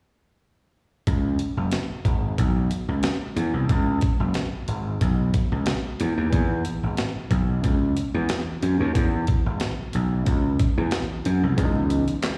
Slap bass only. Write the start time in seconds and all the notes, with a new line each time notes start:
1.07 C#2
1.57 F#1
1.90 muted slap bass stroke
2.05 G#1
2.38 B1
2.88 C#2
3.36 E2
3.53 C2
3.70 C#2
4.20 F#1
4.53 muted slap bass stroke
4.68 G#1
5.01 B1
5.52 C#2
6.00 E2
6.17 D#2
6.33 E2
6.83 G#1
7.16 muted slap bass stroke
7.31 B1
7.64 C#2
8.14 E2
8.63 F#2
8.80 D#2
8.95 E2
9.46 G#1
9.79 muted slap bass stroke
9.95 B1
10.27 C#2
10.77 E2
11.26 F#2
11.43 C2
11.58 C#2